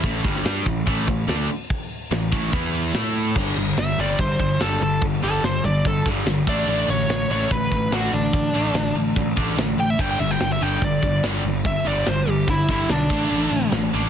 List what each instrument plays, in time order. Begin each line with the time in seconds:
0.03 picked electric bass A1, distorted electric guitar A2 E3 A3, kick
0.24 picked electric bass G1, distorted electric guitar G2 D3 G3, kick, open hi-hat
0.36 snare
0.44 picked electric bass G2, distorted electric guitar G3 D4 G4, snare, open hi-hat
0.66 picked electric bass A1, distorted electric guitar A2 E3, kick, open hi-hat
0.86 picked electric bass A1, distorted electric guitar A2 E3 A3, kick, open hi-hat
1.07 picked electric bass A1, distorted electric guitar A2 E3, kick
1.28 picked electric bass D2, distorted electric guitar D3 A3 D4, snare
1.50 open hi-hat
1.70 kick, open hi-hat
1.91 open hi-hat
2.11 picked electric bass A1, distorted electric guitar A2 E3, snare, open hi-hat
2.31 picked electric bass A1, distorted electric guitar A2 E3 A3, kick, open hi-hat
2.52 picked electric bass E2, distorted electric guitar E3 B3 E4, kick, open hi-hat
2.74 open hi-hat
2.94 picked electric bass A2, distorted electric guitar A3 E4 A4, snare
3.15 open hi-hat
3.36 picked electric bass G1, distorted electric guitar G2 D3 G3, kick, crash
3.56 picked electric bass G1, distorted electric guitar G2 D3, open hi-hat
3.77 picked electric bass G1, distorted electric guitar G2 D3, lead electric guitar E5, snare, open hi-hat
3.98 picked electric bass G1, distorted electric guitar G2 D3 G3, lead electric guitar D5, open hi-hat
4.19 picked electric bass G1, distorted electric guitar G2 D3, lead electric guitar C5, kick, open hi-hat
4.39 picked electric bass G1, distorted electric guitar G2 D3, kick
4.60 picked electric bass G1, distorted electric guitar G2 D3 G3, lead electric guitar A4, snare, open hi-hat
4.81 picked electric bass G1, distorted electric guitar G2 D3, lead electric guitar A4, open hi-hat
5.01 picked electric bass G1, distorted electric guitar G2 D3, kick, open hi-hat
5.22 picked electric bass G1, distorted electric guitar G2 D3 G3, lead electric guitar A4, open hi-hat
5.43 picked electric bass G1, distorted electric guitar G2 D3, lead electric guitar C5, snare, open hi-hat
5.64 picked electric bass G1, distorted electric guitar G2 D3, lead electric guitar D5, open hi-hat
5.85 picked electric bass G1, distorted electric guitar G2 D3, lead electric guitar A4, kick, open hi-hat
6.06 picked electric bass G1, distorted electric guitar G2 D3 G3, kick, open hi-hat
6.26 picked electric bass G1, distorted electric guitar G2 D3, snare, open hi-hat
6.47 picked electric bass A1, distorted electric guitar D3 A3 D4, lead electric guitar D5, kick, crash
6.67 picked electric bass A1, distorted electric guitar D3 A3 D4
6.88 picked electric bass A1, distorted electric guitar D3 A3, lead electric guitar C#5, open hi-hat
7.08 picked electric bass A1, distorted electric guitar D3 A3, snare, open hi-hat
7.29 picked electric bass A1, distorted electric guitar D3 A3 D4, lead electric guitar C#5, open hi-hat
7.51 picked electric bass A1, distorted electric guitar D3 A3, lead electric guitar B4, kick, open hi-hat
7.72 picked electric bass A1, distorted electric guitar D3 A3, kick, open hi-hat
7.91 picked electric bass A1, distorted electric guitar D3 A3 D4, lead electric guitar F#4, snare, open hi-hat
8.13 picked electric bass A1, distorted electric guitar D3 A3, lead electric guitar D4, open hi-hat
8.33 picked electric bass A1, distorted electric guitar D3 A3, kick, open hi-hat
8.54 picked electric bass A1, distorted electric guitar D3 A3 D4, open hi-hat
8.74 picked electric bass A1, distorted electric guitar D3 A3, snare, open hi-hat
8.95 picked electric bass A1, distorted electric guitar D3 A3, open hi-hat
9.16 picked electric bass A1, distorted electric guitar D3 A3, kick
9.36 picked electric bass A1, distorted electric guitar D3 A3 D4, kick, open hi-hat
9.57 picked electric bass A1, distorted electric guitar D3 A3, snare, open hi-hat
9.77 picked electric bass A1, distorted electric guitar D3 A3, lead electric guitar G5, open hi-hat
9.90 lead electric guitar E5
9.98 picked electric bass G1, distorted electric guitar G2 D3 G3, lead electric guitar G5, kick, crash
10.11 lead electric guitar G5
10.19 picked electric bass G1, distorted electric guitar G2 D3, lead electric guitar E5, open hi-hat
10.31 lead electric guitar G5, snare
10.40 picked electric bass G1, distorted electric guitar G2 D3, lead electric guitar G5, snare, open hi-hat
10.52 lead electric guitar E5
10.61 picked electric bass G1, distorted electric guitar G2 D3 G3, lead electric guitar G5, open hi-hat
10.81 picked electric bass G1, distorted electric guitar G2 D3, lead electric guitar D5, kick
11.03 picked electric bass G1, distorted electric guitar G2 D3, kick, open hi-hat
11.23 picked electric bass G1, distorted electric guitar G2 D3 G3, snare, open hi-hat
11.44 picked electric bass G1, distorted electric guitar G2 D3, open hi-hat
11.65 picked electric bass G1, distorted electric guitar G2 D3, lead electric guitar E5, kick, open hi-hat
11.85 picked electric bass G1, distorted electric guitar G2 D3 G3, lead electric guitar D5, open hi-hat
12.06 picked electric bass G1, distorted electric guitar G2 D3, lead electric guitar C5, snare, open hi-hat
12.27 picked electric bass G1, distorted electric guitar G2 D3, lead electric guitar G4, open hi-hat
12.48 picked electric bass G1, distorted electric guitar G2 D3, lead electric guitar E4, kick, open hi-hat
12.68 picked electric bass G1, distorted electric guitar G2 D3 G3, lead electric guitar E4, kick, open hi-hat
12.89 picked electric bass B1, distorted electric guitar G2 D3, lead electric guitar D4, snare, open hi-hat
13.10 picked electric bass A1, distorted electric guitar D3 A3 D4, kick, crash
13.30 picked electric bass A1, distorted electric guitar D3 A3 D4
13.51 picked electric bass A1, distorted electric guitar D3 A3, open hi-hat
13.72 picked electric bass A1, distorted electric guitar D3 A3, snare, open hi-hat
13.93 picked electric bass A1, distorted electric guitar D3 A3 D4, open hi-hat